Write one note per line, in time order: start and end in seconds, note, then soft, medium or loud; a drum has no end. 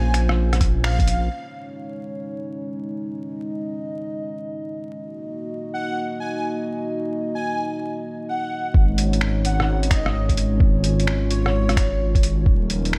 0.00 1.29 A#1 medium
0.00 1.27 A#3 medium
0.00 1.27 C#4 medium
0.00 1.26 F4 medium
0.00 1.29 C5 loud
0.00 0.16 G#5 medium
0.14 finger snap medium
0.14 closed hi-hat medium
0.29 cross-stick medium
0.53 cross-stick medium
0.53 closed hi-hat soft
0.61 kick loud
0.61 cross-stick soft
0.61 closed hi-hat medium
0.84 1.23 F5 medium
0.84 finger snap loud
0.99 kick loud
0.99 closed hi-hat soft
1.08 closed hi-hat medium
1.30 4.99 G#3 medium
1.30 4.99 C#4 medium
1.30 4.99 D#4 medium
1.30 3.15 C#5 medium
3.16 5.00 D#5 medium
5.02 8.71 A#3 medium
5.02 8.71 D#4 medium
5.02 8.70 F#4 medium
5.02 8.71 D#5 medium
5.74 5.98 F#5 medium
6.20 6.29 G#5 medium
6.36 6.40 G#5 medium
7.35 7.60 G#5 medium
8.29 8.67 F#5 medium
8.74 12.45 G#1 medium
8.74 12.43 G#3 medium
8.74 12.43 C#4 medium
8.74 10.59 D#4 medium
8.74 12.43 C#5 medium
8.74 kick loud
8.98 closed hi-hat medium
9.13 closed hi-hat soft
9.21 finger snap loud
9.45 9.69 F#5 medium
9.45 closed hi-hat medium
9.60 cross-stick medium
9.83 closed hi-hat soft
9.91 10.16 D#5 medium
9.91 finger snap loud
9.91 kick loud
9.91 closed hi-hat medium
10.06 cross-stick medium
10.29 kick medium
10.29 closed hi-hat soft
10.37 closed hi-hat medium
10.60 12.45 F4 medium
10.60 kick loud
10.84 closed hi-hat medium
11.00 closed hi-hat soft
11.07 finger snap loud
11.30 11.97 C#5 loud
11.30 closed hi-hat medium
11.46 cross-stick medium
11.69 cross-stick medium
11.69 closed hi-hat soft
11.77 finger snap loud
11.77 kick loud
11.77 cross-stick soft
11.77 closed hi-hat medium
12.15 kick loud
12.15 closed hi-hat soft
12.23 closed hi-hat medium
12.46 12.98 D#1 medium
12.46 12.98 F3 medium
12.46 12.98 F#3 medium
12.46 12.98 D#4 medium
12.46 12.98 A#4 medium
12.46 kick loud
12.70 closed hi-hat medium
12.85 closed hi-hat soft
12.93 finger snap loud